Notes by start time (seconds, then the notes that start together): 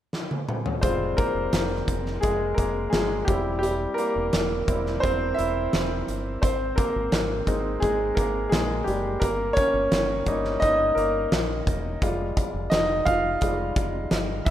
0.13 snare
0.31 high tom
0.49 mid tom
0.66 floor tom
0.81 F1 G3 G#3 C4 F4 C5, kick, closed hi-hat
1.17 A#3 A#4, kick, closed hi-hat
1.35 F1
1.53 F1, snare, closed hi-hat
1.88 F1, kick, closed hi-hat
2.06 snare
2.21 F1 G#3 G#4, kick, closed hi-hat
2.54 F1 A#3 A#4, kick, closed hi-hat
2.90 G1 G#3 G#4, snare, closed hi-hat
3.25 E1 G3 C4 G4, kick, closed hi-hat
3.29 E4
3.59 G3 G4
3.63 closed hi-hat
3.94 A#4, closed hi-hat
3.98 A#3
4.16 E1
4.33 E1, snare, closed hi-hat
4.68 E1 G3 C4 E4, kick, closed hi-hat
4.86 snare
5.00 E1 C4 C5, kick, closed hi-hat
5.34 E1 E4 E5
5.39 closed hi-hat
5.73 E1, snare, closed hi-hat
6.08 G1, closed hi-hat
6.42 G#1 C4 C5, kick, closed hi-hat
6.76 A#3 A#4, kick, closed hi-hat
6.96 G#1
7.12 G#1, snare, closed hi-hat
7.47 G#1 G#3 C4 D#4, kick, closed hi-hat
7.80 G#1 G#3 G#4, kick, closed hi-hat
8.15 G#1 A#3 A#4, kick, closed hi-hat
8.49 A#1 G#4, snare, closed hi-hat
8.54 G#3
8.84 F#1 G3 G4, closed hi-hat
9.20 G1 A#3 A#4, kick, closed hi-hat
9.53 C#5, kick, closed hi-hat
9.57 C#4
9.74 G1
9.92 G1, snare, closed hi-hat
10.26 G1 G3 A#3 D#4, kick, closed hi-hat
10.45 snare
10.60 G1 D#4 D#5, kick, closed hi-hat
10.95 G1 A#3 A#4, closed hi-hat
11.32 A#1, snare, closed hi-hat
11.67 E1, kick, closed hi-hat
12.02 F1 G3 G#3 F4, kick, closed hi-hat
12.37 kick, closed hi-hat
12.54 F1
12.70 F1 D#4 D#5, snare, closed hi-hat
13.05 F1 F4 F5, kick, closed hi-hat
13.41 F1 G3 G#3 F4, kick, closed hi-hat
13.76 F1, kick, closed hi-hat
14.11 G1, snare, closed hi-hat
14.45 E1 E5, kick, closed hi-hat